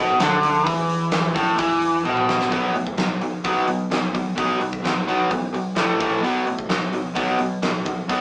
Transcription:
Already playing: B1 B2
0.20 D2 D3, snare, open hi-hat
0.43 open hi-hat
0.66 E2 E3, kick, open hi-hat
0.89 open hi-hat
1.12 snare, open hi-hat
1.35 A1 A2, kick, open hi-hat
1.58 E2 E3, kick, open hi-hat
1.82 open hi-hat
2.05 B1 B2, high tom
2.17 mid tom
2.29 snare
2.41 snare
2.51 B1 B2 F#3 B3, kick, open hi-hat
2.75 A2 B2 F#3, open hi-hat
2.87 kick
2.98 B1 B2 F#3, snare, open hi-hat
3.21 B1 B2 F#3, open hi-hat
3.44 B1 B2 F#3 B3, kick, open hi-hat
3.67 B2 F#3, open hi-hat
3.91 B1 B2 F#3, snare, open hi-hat
4.14 B2 F#3, kick, open hi-hat
4.37 B1 B2 F#3 B3, kick, open hi-hat
4.61 B2 F#3, open hi-hat
4.73 kick
4.84 B1 B2 F#3, snare, open hi-hat
5.08 B2 F#3 B3, open hi-hat
5.31 A1 B2 F#3, kick, open hi-hat
5.54 B1 B2 F#3, open hi-hat
5.76 A1 A2 E3 A3, snare, open hi-hat
6.00 A1 A2 E3 A3, kick, open hi-hat
6.23 B1 B2 F#3 B3, open hi-hat
6.46 A2 B2 F#3, open hi-hat
6.59 kick
6.69 B1 B2 F#3, snare, open hi-hat
6.93 B1 B2 F#3, open hi-hat
7.15 B1 B2 F#3 B3, kick, open hi-hat
7.39 B2 F#3, open hi-hat
7.62 B1 B2 F#3, snare, open hi-hat
7.86 B2 F#3, kick, open hi-hat
8.09 B1 B2 F#3 B3, kick, open hi-hat

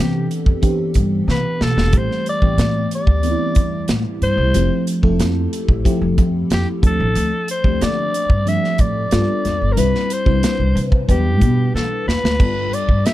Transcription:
Already playing: C3 E3 B3 C4 D4 G4 A4
0.31 closed hi-hat
0.46 F2, kick
0.62 E3 B3 C4 D4 G4, kick, closed hi-hat
0.94 G2, kick, closed hi-hat
1.28 C3 B4, snare
1.61 B2 A4, snare
1.77 E1, snare
1.92 A1 E3 G3 A3 C4 G4, kick, closed hi-hat
1.97 C5
2.11 snare
2.26 D5, closed hi-hat
2.42 A1 E3 A3 B3 C4 G4, kick
2.58 A2, snare, closed hi-hat
2.91 D5, closed hi-hat
3.07 D2, kick
3.23 E3 A3 B3 C4 D4, closed hi-hat
3.31 E4
3.55 E2, kick, closed hi-hat
3.88 A2, snare, closed hi-hat
4.22 G2 C5, closed hi-hat
4.37 C2
4.54 F1 F3 A3 C4 E4 G4, closed hi-hat
4.87 closed hi-hat
5.02 F1 F3 A3 C4 E4 A4, kick
5.19 F2, snare, closed hi-hat
5.53 closed hi-hat
5.68 A1, kick
5.84 F3 A3 C4 E4 G4, kick, closed hi-hat
6.01 F1
6.18 F2, kick, closed hi-hat
6.50 F2 G4, snare, closed hi-hat
6.82 D2 F3 A3 C4 D4 A4, kick, closed hi-hat
6.87 A4
7.00 A1
7.15 D2, closed hi-hat
7.48 C5, closed hi-hat
7.64 D2 F3 A3 C4 D4 G4, kick
7.81 D3 D5, snare, closed hi-hat
8.14 closed hi-hat
8.30 G2, kick
8.46 F3 A3 C4 D4 G4 E5, closed hi-hat
8.64 snare
8.78 A2 D5, kick, closed hi-hat
9.11 G2 G3 B3 D4 F4 A4, snare, closed hi-hat
9.45 F2, snare, closed hi-hat
9.61 G1
9.72 A#4
9.76 C2 G3 C4 D4 E4 B4, closed hi-hat
9.95 snare
10.10 C5, closed hi-hat
10.25 C2 G3 C4 D4 E4 C5, kick
10.43 snare, closed hi-hat
10.59 C2
10.75 C3, closed hi-hat
10.92 kick
11.08 E2 F#3 B3 D4 E4 G4 B4, kick, closed hi-hat
11.14 G3
11.41 B2, kick, closed hi-hat
11.74 E3 A4, snare
12.07 E2 B4, snare
12.24 D2, snare
12.38 G1 G3 B3 D4 F4 A4, kick, crash
12.73 D5, closed hi-hat
12.89 G2, kick
13.06 E5, snare, closed hi-hat

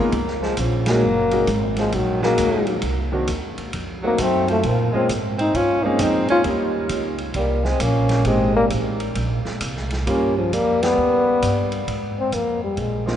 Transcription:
Already playing: D#2 G#3 A#3 B3
0.00 A#3 D#4 F4
0.12 C#2, kick, ride
0.27 snare
0.42 F3 G#3, snare
0.57 A#1 C#3 F3, kick, hi-hat pedal, ride
0.86 F#3 G#3 A#3 C#4 D#4 F#4, snare, ride
1.03 F#1
1.31 G#3 A#3 C#4 D#4 F#4, ride
1.47 G#1, kick, hi-hat pedal, ride
1.76 F3 G#3, snare, ride
1.92 A#1 D#3 F#3, kick, ride
2.22 F#3 G#3 A#3 C#4 D#4 F#4, snare
2.38 D#2, kick, hi-hat pedal, ride
2.67 ride
2.82 C2, kick, ride
3.12 D#3 A#3 C4 D4 F#4
3.27 D#2, kick, hi-hat pedal, ride
3.58 muted upright bass stroke, ride
3.73 F2, kick, ride
4.02 F#3 A3 A#3 C4 D#4 F#4
4.18 F#2 A3 C4, kick, hi-hat pedal, ride
4.48 F3 A3, ride
4.63 A#2 F3, kick, ride
4.68 A#3
4.92 G#3 A#3 C4 C#4 F4, muted upright bass stroke
4.96 C4
5.09 G#2, kick, hi-hat pedal, ride
5.38 C4 D#4, ride
5.54 G2 C#4 F4, kick, ride
5.83 G#3 A#3 C4 C#4 D#4
5.99 F2 C4, kick, hi-hat pedal, ride
6.03 D#4
6.28 C#4 F4, muted upright bass stroke, ride
6.44 D#2 G3 A#3 C#4 D#4 F4, kick, ride
6.89 C#2, kick, hi-hat pedal, ride
7.18 ride
7.34 C2 G3, kick, ride
7.38 A#3
7.64 G#3 C4, snare
7.80 A#1 A#3 C#4, kick, hi-hat pedal, ride
8.09 snare, ride
8.25 G#1 G#3 A#3 C4 D#4 G4, kick, ride
8.56 G3 A#3
8.70 A1, kick, hi-hat pedal, ride
9.00 ride
9.15 A#1, kick, ride
9.45 muted upright bass stroke, snare
9.61 C2, kick, hi-hat pedal, ride
9.77 snare
9.90 snare, ride
10.07 G2 G3 A#3 C#4 F4 G4, kick, ride
10.36 C#3 F3
10.52 F2 G3 A#3, kick, hi-hat pedal, ride
10.82 G3 B3, snare, ride
10.97 D#2
11.42 G2, kick, hi-hat pedal, ride
11.72 ride
11.88 G#2, kick, ride
12.20 C4
12.32 F2 A#3, kick, hi-hat pedal, ride
12.64 G3
12.77 A#1 G#3, kick, ride
13.06 A#3 C4 D#4 F4, snare

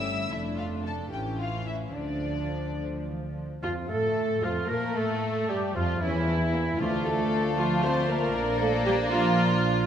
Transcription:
Already playing: G1 G2 G3 A3 C#4 E4 E5 E6
0.31 F1 F2 A3 D4 E4 E5
0.57 F4 F5
0.86 A4 A5
1.11 A1 A2 E3 C#4 G4 G5
1.39 F4 F5
1.66 E4 E5
1.94 D2 D3 F3 D4 D5
2.78 D3
3.06 E3
3.35 F3
3.61 F2 F3 F4
3.89 A2 A3 A4
4.42 F2 F3 A3 F4
4.68 A#2 A#3 A#4
4.94 A2 A3 A4
5.47 G2 G3 G4
5.74 F2 F3 F4
6.00 E2 E3 C#4 E4
6.28 A3
6.52 A#3
6.78 D2 D3 F3 A3 F4 D5 F5 A5
7.05 A3 A4
7.56 F3 A3 F4
7.83 C4 C5
8.09 A#3 A#4
8.34 A#1 A#3 D4 D5 A#5
8.61 A3 A4
8.86 G3 G4
9.10 F3 A#3 D4 F4

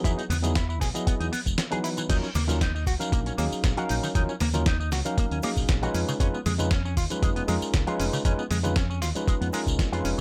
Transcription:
0.04 E2 F#3 B3 D#4 E4 G#4, kick, closed hi-hat, tambourine, high conga, cabasa
0.18 D#4, closed hi-hat, tambourine
0.29 E2 B3, open hi-hat, low conga, cabasa
0.43 F#3 B3 D#4 E4 G#4, closed hi-hat, tambourine, high conga, low conga, cabasa
0.55 E4, kick, snare, closed hi-hat, tambourine, cabasa
0.69 E4, tambourine
0.81 B1 G#4, kick, snare, open hi-hat, cabasa
0.94 F#3 B3 E4 G#4 D#5, closed hi-hat, tambourine, high conga, cabasa
1.07 B3, kick, closed hi-hat, tambourine, cabasa
1.20 E2 D#4, closed hi-hat, tambourine
1.32 B3, open hi-hat, high conga, cabasa
1.46 E1, kick, closed hi-hat, tambourine, cabasa
1.58 snare, closed hi-hat, tambourine, cabasa
1.71 E3 F#3 B3 D#4 G#4 B4, closed hi-hat, tambourine, high conga
1.84 E4, open hi-hat, cabasa
1.97 E3, closed hi-hat, tambourine, cabasa
2.09 D#2 F#3 C#4 D#4 F4 A#4, kick, closed hi-hat, tambourine, crash, high conga, cabasa
2.23 C#4, tambourine
2.35 D#2 A#3, open hi-hat, low conga, cabasa
2.47 F#3 C#4 D#4 F4 A#4, closed hi-hat, tambourine, high conga, low conga, cabasa
2.61 D#4, kick, snare, closed hi-hat, tambourine, cabasa
2.75 D#4, tambourine
2.87 C#2 F#4, kick, open hi-hat, cabasa
2.99 F#3 C#4 D#4 A#4 F5, closed hi-hat, tambourine, high conga, cabasa
3.12 A#1 A#3, kick, closed hi-hat, tambourine, cabasa
3.26 C#4, closed hi-hat, tambourine
3.38 D#2 F#3 A#3 C#4 D#4 G#4 F5, open hi-hat, high conga, cabasa
3.52 muted fingered electric bass stroke, tambourine, cabasa
3.64 A#1, kick, snare, closed hi-hat, tambourine, cabasa
3.77 F#3 C#4 D#4 F#4 A#4 F5, closed hi-hat, tambourine, high conga
3.89 A#1 D#4, open hi-hat, cabasa
4.03 D#3, tambourine, cabasa
4.15 D#2 F#3 C#4 D#4 F4 A#4, kick, closed hi-hat, tambourine, high conga, cabasa
4.29 C#4, tambourine
4.40 D#2 A#3, open hi-hat, low conga, cabasa
4.53 F#3 C#4 D#4 F4 A#4, closed hi-hat, tambourine, high conga, low conga, cabasa
4.66 D#4, kick, snare, closed hi-hat, tambourine, cabasa
4.80 D#4, tambourine
4.92 C#2 F#4, snare, open hi-hat, cabasa
5.05 F#3 C#4 D#4 A#4 F5, closed hi-hat, tambourine, high conga, cabasa
5.18 A#3, kick, closed hi-hat, tambourine, cabasa
5.31 D#2 C#4, closed hi-hat, tambourine
5.43 F#3 A#3 C#4 D#4 G#4 F5, open hi-hat, high conga, cabasa
5.56 A#1, kick, tambourine, cabasa
5.68 A#1, kick, snare, closed hi-hat, tambourine, cabasa
5.82 G#3 C#4 D#4 F4 F#4 B4, closed hi-hat, tambourine, high conga
5.94 F2 C#4, open hi-hat, cabasa
6.08 C#3, tambourine, cabasa
6.20 F2 G#3 C#4 D#4 F4 B4, kick, closed hi-hat, tambourine, high conga, cabasa
6.34 B3, tambourine
6.46 F2 G#3, open hi-hat, low conga, cabasa
6.58 G#3 C#4 D#4 F4 B4, closed hi-hat, tambourine, high conga, low conga, cabasa
6.71 C#4, kick, snare, closed hi-hat, tambourine, cabasa
6.85 C#4, tambourine
6.97 D#2 F4, kick, open hi-hat, cabasa
7.10 G#3 C#4 D#4 F4 B4, closed hi-hat, tambourine, high conga, cabasa
7.22 F1 G#3, kick, closed hi-hat, tambourine, cabasa
7.36 B3, closed hi-hat, tambourine
7.47 F2 G#3 C#4 D#4 F4 A#4, open hi-hat, high conga, cabasa
7.61 muted fingered electric bass stroke, tambourine, cabasa
7.74 C#2, kick, snare, closed hi-hat, tambourine, cabasa
7.87 G#3 C#4 D#4 F4 B4, closed hi-hat, tambourine, high conga
8.00 F1 C#4, open hi-hat, cabasa
8.13 C#3, tambourine, cabasa
8.25 F2 G#3 C#4 D#4 F4 B4, kick, closed hi-hat, tambourine, high conga, cabasa
8.39 B3, tambourine
8.50 F2 G#3, open hi-hat, low conga, cabasa
8.63 G#3 C#4 D#4 F4 B4, closed hi-hat, tambourine, high conga, low conga, cabasa
8.76 C#4, kick, snare, closed hi-hat, tambourine, cabasa
8.90 C#4, tambourine
9.02 D#2 F4, snare, open hi-hat, cabasa
9.15 G#3 C#4 D#4 F4 B4, closed hi-hat, tambourine, high conga, cabasa
9.28 G#3, kick, closed hi-hat, tambourine, cabasa
9.41 F2 B3, closed hi-hat, tambourine
9.53 G#3 C#4 D#4 F4 A#4, open hi-hat, high conga, cabasa
9.67 C#2, kick, closed hi-hat, tambourine, cabasa
9.79 kick, snare, closed hi-hat, tambourine, cabasa
9.92 F2 G#3 C#4 D#4 F4 B4, closed hi-hat, tambourine, high conga
10.04 F1 C#4, open hi-hat, cabasa

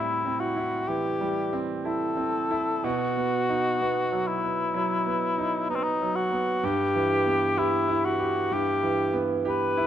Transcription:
Already playing: A2 G3 C4 E4
0.25 C4
0.40 F#4
0.57 E4
0.88 E3 G4
1.21 G3
1.53 C4
1.85 E4 A4
2.17 C4
2.51 E4
2.84 B2 F#4
3.17 B3
3.49 D#4
3.81 B3
4.12 F#3
4.27 E4
4.43 B3
4.74 F#3
5.06 B3
5.38 D#4
5.69 B3 D#4
5.76 C4
5.83 D#4
6.02 F#3
6.15 F#4
6.32 B3
6.63 G2 G4
6.95 E3
7.26 B3
7.57 E4 G4
7.88 E4
8.05 F#4
8.19 G4
8.51 G2 G4
8.83 E3
9.13 B3
9.45 G4
9.49 B4
9.77 E4

